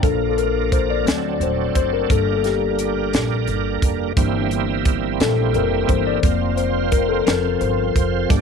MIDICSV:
0, 0, Header, 1, 5, 480
1, 0, Start_track
1, 0, Key_signature, -2, "major"
1, 0, Tempo, 688863
1, 26, Time_signature, 6, 3, 24, 8
1, 5860, End_track
2, 0, Start_track
2, 0, Title_t, "Tine electric piano"
2, 0, Program_c, 0, 4
2, 0, Control_c, 0, 64, 127
2, 13, Note_on_c, 0, 53, 43
2, 20, Note_on_c, 0, 58, 38
2, 24, Note_on_c, 0, 62, 47
2, 24, Note_on_c, 0, 69, 71
2, 35, Control_c, 0, 64, 0
2, 158, Control_c, 0, 64, 127
2, 206, Note_off_c, 0, 69, 0
2, 214, Note_on_c, 0, 69, 59
2, 264, Note_off_c, 0, 69, 0
2, 264, Note_on_c, 0, 70, 75
2, 508, Note_on_c, 0, 72, 84
2, 512, Note_off_c, 0, 70, 0
2, 618, Note_off_c, 0, 72, 0
2, 630, Note_on_c, 0, 74, 86
2, 712, Note_off_c, 0, 53, 0
2, 715, Note_off_c, 0, 58, 0
2, 717, Note_off_c, 0, 62, 0
2, 730, Note_on_c, 0, 54, 43
2, 734, Note_on_c, 0, 57, 44
2, 737, Note_on_c, 0, 60, 50
2, 753, Control_c, 0, 64, 0
2, 888, Control_c, 0, 64, 127
2, 921, Note_off_c, 0, 74, 0
2, 930, Note_on_c, 0, 74, 59
2, 982, Note_off_c, 0, 74, 0
2, 996, Note_on_c, 0, 72, 74
2, 1102, Note_off_c, 0, 72, 0
2, 1232, Note_on_c, 0, 72, 87
2, 1347, Note_on_c, 0, 70, 74
2, 1353, Note_off_c, 0, 72, 0
2, 1431, Note_off_c, 0, 54, 0
2, 1433, Note_off_c, 0, 57, 0
2, 1434, Note_off_c, 0, 60, 0
2, 1455, Note_on_c, 0, 55, 44
2, 1461, Note_on_c, 0, 58, 42
2, 1464, Note_on_c, 0, 62, 52
2, 1470, Note_off_c, 0, 70, 0
2, 1474, Control_c, 0, 64, 0
2, 1474, Note_on_c, 0, 69, 75
2, 1583, Control_c, 0, 64, 127
2, 1643, Note_off_c, 0, 69, 0
2, 1651, Note_on_c, 0, 69, 53
2, 1703, Note_off_c, 0, 69, 0
2, 1711, Note_on_c, 0, 67, 67
2, 1780, Note_off_c, 0, 55, 0
2, 1783, Note_off_c, 0, 58, 0
2, 1784, Note_off_c, 0, 62, 0
2, 2401, Note_off_c, 0, 67, 0
2, 2899, Note_on_c, 0, 52, 47
2, 2903, Note_on_c, 0, 58, 42
2, 2905, Note_on_c, 0, 62, 53
2, 2916, Control_c, 0, 64, 0
2, 3041, Control_c, 0, 64, 127
2, 3222, Note_off_c, 0, 52, 0
2, 3224, Note_off_c, 0, 58, 0
2, 3225, Note_off_c, 0, 62, 0
2, 3630, Note_on_c, 0, 69, 76
2, 3852, Note_off_c, 0, 69, 0
2, 3870, Note_on_c, 0, 70, 79
2, 4093, Note_on_c, 0, 52, 48
2, 4096, Note_on_c, 0, 58, 41
2, 4100, Note_on_c, 0, 62, 51
2, 4105, Note_on_c, 0, 72, 90
2, 4115, Note_off_c, 0, 70, 0
2, 4228, Note_on_c, 0, 74, 92
2, 4230, Note_off_c, 0, 72, 0
2, 4315, Note_off_c, 0, 52, 0
2, 4317, Note_off_c, 0, 58, 0
2, 4319, Note_off_c, 0, 62, 0
2, 4335, Note_on_c, 0, 53, 45
2, 4337, Note_on_c, 0, 58, 44
2, 4341, Note_on_c, 0, 60, 50
2, 4356, Control_c, 0, 64, 0
2, 4480, Control_c, 0, 64, 127
2, 4580, Note_on_c, 0, 72, 77
2, 4598, Note_off_c, 0, 74, 0
2, 4821, Note_on_c, 0, 70, 81
2, 4831, Note_off_c, 0, 72, 0
2, 4940, Note_on_c, 0, 69, 69
2, 4948, Note_off_c, 0, 70, 0
2, 5033, Note_off_c, 0, 53, 0
2, 5033, Note_off_c, 0, 58, 0
2, 5036, Note_off_c, 0, 60, 0
2, 5055, Note_off_c, 0, 69, 0
2, 5062, Note_on_c, 0, 53, 48
2, 5065, Note_on_c, 0, 69, 42
2, 5065, Note_on_c, 0, 70, 76
2, 5068, Note_on_c, 0, 60, 51
2, 5075, Control_c, 0, 64, 0
2, 5198, Control_c, 0, 64, 127
2, 5303, Note_on_c, 0, 72, 76
2, 5313, Note_off_c, 0, 70, 0
2, 5755, Note_off_c, 0, 53, 0
2, 5757, Note_off_c, 0, 69, 0
2, 5758, Note_off_c, 0, 60, 0
2, 5779, Note_on_c, 0, 55, 46
2, 5782, Note_on_c, 0, 58, 45
2, 5784, Note_on_c, 0, 62, 49
2, 5794, Control_c, 0, 64, 0
2, 5860, Note_off_c, 0, 55, 0
2, 5860, Note_off_c, 0, 58, 0
2, 5860, Note_off_c, 0, 62, 0
2, 5860, Note_off_c, 0, 72, 0
2, 5860, End_track
3, 0, Start_track
3, 0, Title_t, "Tonewheel organ"
3, 0, Program_c, 1, 16
3, 17, Note_on_c, 1, 53, 60
3, 19, Note_on_c, 1, 58, 51
3, 20, Note_on_c, 1, 62, 48
3, 21, Note_on_c, 1, 70, 63
3, 735, Note_off_c, 1, 62, 0
3, 741, Note_off_c, 1, 53, 0
3, 741, Note_on_c, 1, 54, 52
3, 742, Note_on_c, 1, 60, 54
3, 743, Note_off_c, 1, 58, 0
3, 743, Note_off_c, 1, 70, 0
3, 744, Note_on_c, 1, 62, 49
3, 744, Note_on_c, 1, 69, 61
3, 1450, Note_off_c, 1, 62, 0
3, 1458, Note_on_c, 1, 55, 60
3, 1458, Note_on_c, 1, 58, 53
3, 1458, Note_on_c, 1, 62, 54
3, 1462, Note_on_c, 1, 70, 64
3, 1464, Note_off_c, 1, 54, 0
3, 1465, Note_off_c, 1, 60, 0
3, 1466, Note_off_c, 1, 69, 0
3, 2875, Note_off_c, 1, 55, 0
3, 2875, Note_off_c, 1, 58, 0
3, 2875, Note_off_c, 1, 62, 0
3, 2877, Note_off_c, 1, 70, 0
3, 2905, Note_on_c, 1, 60, 66
3, 2908, Note_on_c, 1, 64, 67
3, 2909, Note_on_c, 1, 55, 77
3, 2909, Note_on_c, 1, 58, 81
3, 4318, Note_off_c, 1, 60, 0
3, 4320, Note_off_c, 1, 55, 0
3, 4320, Note_off_c, 1, 58, 0
3, 4320, Note_off_c, 1, 64, 0
3, 4345, Note_on_c, 1, 72, 65
3, 4347, Note_on_c, 1, 65, 53
3, 4348, Note_on_c, 1, 58, 57
3, 4349, Note_on_c, 1, 60, 51
3, 5050, Note_off_c, 1, 65, 0
3, 5052, Note_off_c, 1, 60, 0
3, 5052, Note_off_c, 1, 72, 0
3, 5059, Note_on_c, 1, 65, 53
3, 5060, Note_on_c, 1, 60, 53
3, 5060, Note_on_c, 1, 72, 62
3, 5061, Note_on_c, 1, 53, 58
3, 5067, Note_off_c, 1, 58, 0
3, 5780, Note_on_c, 1, 57, 47
3, 5780, Note_on_c, 1, 62, 54
3, 5780, Note_on_c, 1, 74, 67
3, 5782, Note_off_c, 1, 65, 0
3, 5783, Note_off_c, 1, 53, 0
3, 5783, Note_off_c, 1, 60, 0
3, 5783, Note_off_c, 1, 72, 0
3, 5784, Note_on_c, 1, 67, 58
3, 5828, Note_off_c, 1, 57, 0
3, 5828, Note_on_c, 1, 58, 58
3, 5860, Note_off_c, 1, 58, 0
3, 5860, Note_off_c, 1, 62, 0
3, 5860, Note_off_c, 1, 67, 0
3, 5860, Note_off_c, 1, 74, 0
3, 5860, End_track
4, 0, Start_track
4, 0, Title_t, "Upright bass"
4, 0, Program_c, 2, 32
4, 21, Note_on_c, 2, 34, 77
4, 716, Note_off_c, 2, 34, 0
4, 739, Note_on_c, 2, 38, 82
4, 963, Note_off_c, 2, 38, 0
4, 977, Note_on_c, 2, 27, 77
4, 1202, Note_off_c, 2, 27, 0
4, 1222, Note_on_c, 2, 30, 68
4, 1445, Note_off_c, 2, 30, 0
4, 1462, Note_on_c, 2, 31, 89
4, 2157, Note_off_c, 2, 31, 0
4, 2185, Note_on_c, 2, 34, 76
4, 2407, Note_off_c, 2, 34, 0
4, 2425, Note_on_c, 2, 31, 74
4, 2647, Note_off_c, 2, 31, 0
4, 2662, Note_on_c, 2, 29, 67
4, 2885, Note_off_c, 2, 29, 0
4, 2903, Note_on_c, 2, 31, 89
4, 3597, Note_off_c, 2, 31, 0
4, 3626, Note_on_c, 2, 34, 93
4, 3847, Note_off_c, 2, 34, 0
4, 3862, Note_on_c, 2, 29, 77
4, 4085, Note_off_c, 2, 29, 0
4, 4102, Note_on_c, 2, 31, 74
4, 4325, Note_off_c, 2, 31, 0
4, 4344, Note_on_c, 2, 29, 84
4, 5037, Note_off_c, 2, 29, 0
4, 5063, Note_on_c, 2, 29, 77
4, 5285, Note_off_c, 2, 29, 0
4, 5303, Note_on_c, 2, 31, 79
4, 5525, Note_off_c, 2, 31, 0
4, 5544, Note_on_c, 2, 29, 73
4, 5766, Note_off_c, 2, 29, 0
4, 5784, Note_on_c, 2, 31, 83
4, 5860, Note_off_c, 2, 31, 0
4, 5860, End_track
5, 0, Start_track
5, 0, Title_t, "Drums"
5, 21, Note_on_c, 9, 36, 103
5, 22, Note_on_c, 9, 42, 73
5, 91, Note_off_c, 9, 36, 0
5, 92, Note_off_c, 9, 42, 0
5, 265, Note_on_c, 9, 42, 44
5, 334, Note_off_c, 9, 42, 0
5, 502, Note_on_c, 9, 36, 80
5, 503, Note_on_c, 9, 42, 64
5, 572, Note_off_c, 9, 36, 0
5, 573, Note_off_c, 9, 42, 0
5, 746, Note_on_c, 9, 42, 73
5, 755, Note_on_c, 9, 38, 93
5, 816, Note_off_c, 9, 42, 0
5, 825, Note_off_c, 9, 38, 0
5, 982, Note_on_c, 9, 42, 44
5, 1052, Note_off_c, 9, 42, 0
5, 1221, Note_on_c, 9, 42, 62
5, 1222, Note_on_c, 9, 36, 71
5, 1291, Note_off_c, 9, 42, 0
5, 1292, Note_off_c, 9, 36, 0
5, 1463, Note_on_c, 9, 36, 95
5, 1463, Note_on_c, 9, 42, 80
5, 1532, Note_off_c, 9, 42, 0
5, 1533, Note_off_c, 9, 36, 0
5, 1701, Note_on_c, 9, 42, 46
5, 1712, Note_on_c, 9, 38, 31
5, 1771, Note_off_c, 9, 42, 0
5, 1781, Note_off_c, 9, 38, 0
5, 1941, Note_on_c, 9, 42, 65
5, 2011, Note_off_c, 9, 42, 0
5, 2184, Note_on_c, 9, 42, 71
5, 2192, Note_on_c, 9, 38, 93
5, 2253, Note_off_c, 9, 42, 0
5, 2262, Note_off_c, 9, 38, 0
5, 2421, Note_on_c, 9, 42, 44
5, 2490, Note_off_c, 9, 42, 0
5, 2664, Note_on_c, 9, 36, 77
5, 2664, Note_on_c, 9, 42, 66
5, 2733, Note_off_c, 9, 36, 0
5, 2734, Note_off_c, 9, 42, 0
5, 2904, Note_on_c, 9, 36, 110
5, 2904, Note_on_c, 9, 42, 82
5, 2973, Note_off_c, 9, 42, 0
5, 2974, Note_off_c, 9, 36, 0
5, 3143, Note_on_c, 9, 42, 44
5, 3212, Note_off_c, 9, 42, 0
5, 3382, Note_on_c, 9, 42, 67
5, 3383, Note_on_c, 9, 36, 88
5, 3451, Note_off_c, 9, 42, 0
5, 3453, Note_off_c, 9, 36, 0
5, 3625, Note_on_c, 9, 42, 74
5, 3633, Note_on_c, 9, 38, 97
5, 3695, Note_off_c, 9, 42, 0
5, 3703, Note_off_c, 9, 38, 0
5, 3862, Note_on_c, 9, 42, 43
5, 3931, Note_off_c, 9, 42, 0
5, 4103, Note_on_c, 9, 36, 79
5, 4103, Note_on_c, 9, 42, 64
5, 4172, Note_off_c, 9, 42, 0
5, 4173, Note_off_c, 9, 36, 0
5, 4341, Note_on_c, 9, 42, 83
5, 4343, Note_on_c, 9, 36, 102
5, 4411, Note_off_c, 9, 42, 0
5, 4412, Note_off_c, 9, 36, 0
5, 4581, Note_on_c, 9, 42, 46
5, 4651, Note_off_c, 9, 42, 0
5, 4821, Note_on_c, 9, 42, 68
5, 4823, Note_on_c, 9, 36, 80
5, 4890, Note_off_c, 9, 42, 0
5, 4892, Note_off_c, 9, 36, 0
5, 5064, Note_on_c, 9, 42, 73
5, 5072, Note_on_c, 9, 38, 106
5, 5134, Note_off_c, 9, 42, 0
5, 5142, Note_off_c, 9, 38, 0
5, 5302, Note_on_c, 9, 42, 45
5, 5371, Note_off_c, 9, 42, 0
5, 5545, Note_on_c, 9, 36, 83
5, 5546, Note_on_c, 9, 42, 63
5, 5614, Note_off_c, 9, 36, 0
5, 5616, Note_off_c, 9, 42, 0
5, 5784, Note_on_c, 9, 42, 82
5, 5785, Note_on_c, 9, 36, 111
5, 5854, Note_off_c, 9, 36, 0
5, 5854, Note_off_c, 9, 42, 0
5, 5860, End_track
0, 0, End_of_file